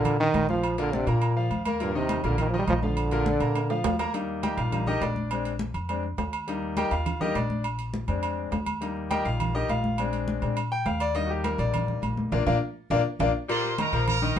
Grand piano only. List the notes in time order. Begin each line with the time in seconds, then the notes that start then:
Already playing: A#2 A#3 A#4
0.20 D#3 D#4 D#5
0.49 F3 F4 F5
0.78 A#2 A#3 A#4
0.93 D3 D4 D5
1.07 A#3 A#4 A#5
1.36 F3 F4 F5
1.66 A#3 A#4 A#5
1.80 A#2 A#3 A#4
1.95 D#3 D#4 D#5
2.24 A#2 A#3 A#4
2.54 D#3 D#4 D#5
2.83 F3 F4 F5
3.12 A#2 A#3 A#4
3.26 D3 D4 D5
3.41 A#3 A#4 A#5
3.70 F3 F4 F5
4.00 A#3 A#4 A#5
4.13 G3 A#3 D#4
4.43 G4 A#4 D#5 G5
4.57 F4 F5
4.72 G3 A#3 D#4
4.87 D#4 G4 A#4 D#5
5.01 D4 D5
5.31 G#3 C4 D4
5.89 G#3 C4 D4
6.47 G3 A#3 D#4
6.77 G4 A#4 D#5 G5
6.92 F4 F5
7.20 G3 A#3 D#4 G4 A#4 D#5
7.35 D4 D5
8.08 G#3 C4 D4
8.81 G3 A#3 D#4
9.11 G4 A#4 D#5 G5
9.25 F4 F5
9.55 D#4 G4 A#4 D#5
9.69 F4 F5
9.98 G#3 C4 D4
10.42 G#3 C4 D4
10.72 G5
10.86 F5
11.01 D5
11.15 G3 A#3 D#4 D#5
11.25 F#4
11.30 G4
11.44 A#4
11.59 D5
12.32 A#3 D4 F4
12.46 A#3 D4 F4
12.91 A#3 D4 F4
13.20 A#3 D4 F4
13.49 A#2 A#3 A#4
13.78 D#3 D#4 D#5
13.93 A#3 A#4 A#5
14.22 D#3 D#4 D#5